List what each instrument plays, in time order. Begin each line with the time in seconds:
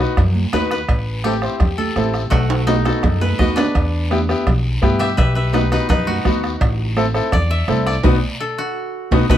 Already playing: koto B3 E4 G4 A4
0.00 upright piano D#4 F#4 B4, short guiro
0.17 upright bass F#2, bombo low, bombo rim, cowbell, low conga, long guiro
0.35 high conga
0.53 upright bass D#2, upright piano D#4 F#4 B4, koto B4, bombo rim, high conga, low timbale, short guiro
0.71 koto B4, bombo rim, short guiro
0.88 upright bass A1, bombo low, bombo rim, cowbell, long guiro
1.24 upright piano C4 E4 A4, koto G4, bombo rim, high conga, short guiro
1.42 upright piano C4 E4 C5, bombo rim, short guiro
1.60 upright bass E2, bombo low, bombo rim, cowbell, low conga, long guiro
1.78 koto A4, high conga
1.96 upright bass A1, upright piano C4 E4 A4, bombo rim, high conga, short guiro
2.14 bombo rim, short guiro
2.30 upright bass B1, koto A3 F#4, bombo low, bombo rim, cowbell, high timbale, long guiro
2.50 high timbale
2.67 upright piano B3 D#4 F#4, koto D#4, bombo rim, high conga, low timbale, short guiro
2.85 upright piano B3 D#4 F#4, koto A4, bombo rim, low timbale, short guiro
3.03 upright bass F#2, bombo low, bombo rim, cowbell, low conga, low timbale, long guiro
3.21 koto B4, high conga, low timbale
3.39 upright bass D#2, upright piano B3 D#4 F#4, koto D#5, bombo low, bombo rim, high conga, low conga, low timbale, short guiro
3.56 koto D4 B4, bombo rim, low timbale, short guiro
3.75 upright bass E2, bombo low, bombo rim, cowbell, long guiro
4.11 upright piano B3 E4 G4, bombo rim, high conga, short guiro
4.29 upright piano B3 E4 G4, bombo rim, short guiro
4.47 upright bass B1, bombo low, bombo rim, cowbell, low conga, long guiro
4.82 upright bass G2, upright piano B3 E4 G4, bombo low, bombo rim, high conga, short guiro
4.99 koto G4 E5, bombo rim, short guiro
5.17 upright bass B1, koto B4 E5, bombo low, bombo rim, cowbell, low conga
5.35 koto B4 E5
5.53 upright piano B3 D#4 F#4, koto D#4 B4, bombo rim, high conga, short guiro
5.71 upright piano B3 D#4 F#4, koto D#4 B4, bombo rim, short guiro
5.89 upright bass F#2, koto D#4 B4, bombo low, bombo rim, cowbell, low conga, long guiro
6.07 koto F#4, high conga
6.25 upright bass D#2, upright piano B3 D#4 F#4, bombo low, bombo rim, high conga, low conga, short guiro
6.43 bombo rim, short guiro
6.61 upright bass A1, bombo low, bombo rim, cowbell, long guiro
6.96 upright piano C4 E4 A4, bombo rim, high conga, short guiro
7.14 upright piano C4 E4 A4, bombo rim, short guiro
7.32 upright bass E2, koto D5, bombo low, bombo rim, cowbell, low conga, long guiro
7.51 koto E5
7.68 upright bass C2, upright piano C4 E4 A4, bombo rim, high conga, short guiro
7.87 koto D5, bombo rim, short guiro
8.03 upright bass B1, upright piano B3 D#4 F#4, bombo low, high conga, high timbale, long guiro
8.40 koto A4
8.58 koto F#4
9.11 upright bass B1, upright piano B3 D#4 F#4, bombo low, high conga, high timbale, long guiro
9.29 upright bass B1, upright piano B3 D#4 F#4, koto B4, bombo low, high conga, high timbale, long guiro